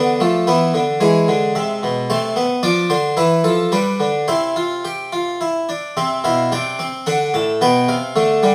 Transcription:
Already playing: D3 B3 D5
0.20 F3 A3
0.47 E3 B3 E5
0.74 D3
1.00 E3 G#3 G#5
1.28 D3
1.55 C3 E5
1.83 B2
2.10 C3 A3 C5
2.36 B3
2.63 F3 D4 D5
2.90 D3 C5
3.17 E3 E4 B4
3.44 F3 A4
3.72 G3 D4 B4
4.00 D3
4.28 C3 E4 C5
4.56 F4
4.85 G4
5.12 F4
5.41 E4
5.69 D4
5.97 C3 C4 E5
6.24 B2 E4 F5
6.52 C3 D4 G5
6.79 C4
7.06 D3 D4 F#5
7.34 A2 A5
7.61 B2 B3 G5
7.88 C3 F5
8.16 D3 A3
8.43 D3 G3

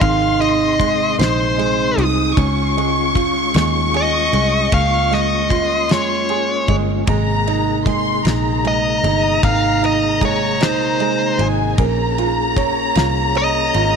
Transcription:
Already playing: C3 G#3 D#4 G#4 C6
0.01 G#1 D#3 C4 F5, kick, ride
0.40 D#4 D#5, ride
0.79 G#3, kick, ride
1.19 A#1 D#4 C5, snare, ride
1.58 G#3, ride
1.97 C2 D#4 D#6, ride
2.36 C#2 G#3 C#4 F4 C#6, kick, ride
2.77 G#3, ride
3.15 F4, kick, ride
3.54 D#2 G#3, snare, ride
3.94 G#4 D#5, ride
4.33 C2 G#3, ride
4.71 C#2 A#3 F5, kick, ride
5.11 G#3 D#5, snare, ride
5.50 F4 C6, kick, ride
5.89 F2 G#3 C#5, snare, ride
6.29 G#4, ride
6.68 G1 G#3, kick, ride
7.07 G#1 C3 G#3 A#3 G#4 A#5, kick, ride
7.47 D#4, ride
7.86 G#3 C6, kick, ride
8.25 A#1 D#4 A#5, snare, ride
8.64 G#3 D#5, ride
9.03 G1 D#4, ride
9.43 G#1 D#3 F5, kick, ride
9.82 D#4 D#5, ride
10.21 G#3 C#5, kick, ride
10.60 A#1 D#4 C5, snare, ride
11.00 G#3, ride
11.39 G#1 D#4 G#5, ride
11.78 A#1 A#3 C#4 A#5, kick, ride
12.18 F4, ride
12.56 C#5, kick, ride
12.95 C2 F4, snare, ride
13.35 C#5 D#5, ride
13.74 G#1 F4, ride

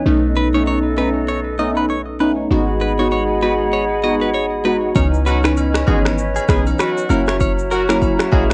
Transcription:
Already playing: B4
0.06 B1 A3 B3 C#4 D#4 A4 D#5
0.37 B4
0.54 A3 B3 C#4 D#4 C#5
0.67 C#5
0.97 A3 B3 C#4 D#4 B4
1.28 C#5
1.59 A3 B3 C#4 D#4 D#5
1.77 B4
1.90 C#5
2.20 A3 B3 C#4 D#4 B4
2.51 G#1 G#3 B3 D#4 F#4 G#4 D#5 F#5 B5
2.81 B4
2.99 G#3 B3 D#4 F#4 C#5
3.12 C#5
3.42 G#3 B3 D#4 F#4 B4
3.73 C#5
4.04 G#3 B3 D#4 F#4 D#5
4.22 B4
4.34 C#5
4.65 G#3 B3 D#4 F#4 B4
4.95 C#2 E3 B3 C#4 D#4 B4 C#5 D#5, kick, high agogo, shaker
5.14 shaker
5.26 F#3 F#4 B4, high agogo, shaker
5.44 E3 B3 C#4 D#4 B4, finger snap, cross-stick, shaker
5.57 high agogo, shaker
5.74 finger snap, cross-stick, shaker
5.87 G#1 E3 G#3 B3 C#4 D#4 F#4 G#4, kick, high agogo
6.05 finger snap, cross-stick, shaker
6.18 shaker
6.36 G#4, high agogo, shaker
6.48 B1 E3 G#3 B3 C#4 D#4 G#4 B4, finger snap, kick, cross-stick, shaker
6.66 high agogo, shaker
6.79 F#3 F#4 B4, finger snap, cross-stick, shaker
6.98 shaker
7.09 F#1 F#3 A#3 C#4 E4 F#4 A#4 C#5 E5 A#5, high agogo, shaker
7.28 C#5, finger snap, cross-stick, shaker
7.40 C#5, kick, high agogo, shaker
7.59 shaker
7.71 F#3 F#4 A#4, high agogo, shaker
7.89 F#3 A#3 C#4 E4 A#4, finger snap, cross-stick, shaker
8.02 kick, high agogo, shaker
8.19 finger snap, cross-stick, shaker
8.32 A#1 F#3 G#3 A#3 C#4 E4 F#4 G#4, kick, high agogo
8.50 cross-stick, shaker

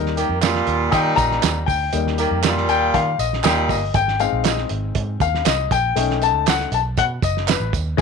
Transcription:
Already playing: D#2 G3 A#3 D#4 A#4
0.06 snare
0.17 D#3 A#3 G4, closed hi-hat, tambourine
0.29 F2
0.41 A#2 G3 F4, snare, clap, closed hi-hat, tambourine
0.55 snare
0.67 D#2, closed hi-hat
0.92 A#2 D#3 G3 D#4 G5, kick, closed hi-hat, tambourine
1.16 A#1 A#5, kick, closed hi-hat, tambourine
1.31 snare
1.42 D#2, snare, clap, closed hi-hat, tambourine
1.66 D2 G5, kick, open hi-hat, tambourine
1.93 D#2 G3 A#3 D#4, closed hi-hat, tambourine
2.07 snare
2.18 D#3 A#3 G4, closed hi-hat, tambourine
2.31 F2
2.43 A#2 G3 F4, snare, clap, closed hi-hat, tambourine
2.57 snare
2.68 D#2 G5, closed hi-hat, tambourine
2.94 D#3 F5, kick, closed hi-hat
3.19 A#1 D#5, closed hi-hat, tambourine
3.33 snare
3.44 D#2 A#2 G3 D#4 G5, snare, clap, closed hi-hat, tambourine
3.69 G1 D#5, kick, open hi-hat, tambourine
3.94 G#1 G5, kick, closed hi-hat, tambourine
4.08 snare
4.19 G#3 C4 D#4 F5, closed hi-hat, tambourine
4.33 A#1
4.44 D#5, snare, clap, closed hi-hat, tambourine
4.58 snare
4.69 G#1, closed hi-hat
4.95 G#2, kick, closed hi-hat
5.20 D#2 F5, kick, closed hi-hat, tambourine
5.34 snare
5.45 C2 D#5, snare, clap, closed hi-hat, tambourine
5.71 A#1 G5, kick, closed hi-hat, tambourine
5.96 B1 A3 C#4 D#4, closed hi-hat, tambourine
6.10 snare
6.22 A5, closed hi-hat, tambourine
6.34 C#2
6.46 F#5, snare, clap, closed hi-hat, tambourine
6.60 snare
6.72 B1 A5, closed hi-hat, tambourine
6.97 B2 F#5, kick, closed hi-hat, tambourine
7.22 F#1 D#5, kick, closed hi-hat, tambourine
7.37 snare
7.48 B4, snare, clap, closed hi-hat, tambourine
7.60 A1
7.73 D#2, kick, closed hi-hat, tambourine
7.97 G#3 B3 E4 G#4

